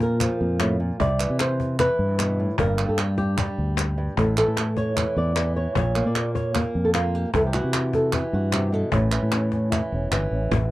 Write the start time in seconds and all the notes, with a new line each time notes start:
Already playing: A#2 F3 A#3 D4
0.00 A#4, cajon bass
0.20 F3, cajon bass, clap
0.40 F2 A#3
0.60 A2, cajon slap, clap
0.80 A#2
1.00 C2 C3 D5, cajon bass
1.20 E3, clap
1.30 C3
1.40 C5, cajon slap, clap
1.60 cajon bass
1.79 E3 B4, cajon bass, clap
1.99 G2
2.19 B2, cajon slap, clap
2.39 A2, cajon slap
2.58 G1 G2 G3 A#3 D4 A#4, cajon bass
2.79 G3, clap
2.89 G2 A4
2.98 G4, cajon slap, clap
3.18 G4, cajon bass, cajon slap
3.38 G3, cajon bass, clap
3.58 D2
3.77 cajon slap, clap
3.98 G2, cajon slap
4.17 A1 A2 A4, cajon bass
4.37 E3 A4, clap
4.48 A2
4.57 A3, cajon slap, clap
4.77 C#5, cajon bass
4.96 E3, cajon bass, clap
5.16 E2 D5
5.36 E3, cajon slap, clap
5.56 C#5
5.75 A#1 A#2 C#5, cajon bass
5.96 A#3, clap
6.05 A#2 D5
6.15 cajon slap, clap
6.35 C#5, cajon bass
6.55 A#3 A#4, cajon bass, clap
6.75 F2
6.85 A4
6.94 A#3 F4, cajon slap, clap
7.15 G4
7.33 C2 C3 E3 E4 A4, cajon bass
7.47 G4
7.54 E3 F#4, clap
7.64 C3
7.73 cajon slap, clap
7.93 A4, cajon bass
8.13 E3 G4, cajon bass, clap
8.33 G2 F#4
8.52 C3 G4, cajon slap, clap
8.72 B2 A4, cajon slap
8.92 A1 A2 E3 C#4, cajon bass
9.12 E3, clap
9.23 A2
9.32 C#4, cajon slap, clap
9.52 C#4, cajon bass, cajon slap
9.72 E3, cajon bass, clap
9.92 E1 C#4
10.11 G1 E3, cajon slap, clap
10.31 A1 C#4
10.51 A1, muted nylon-string guitar stroke, cajon bass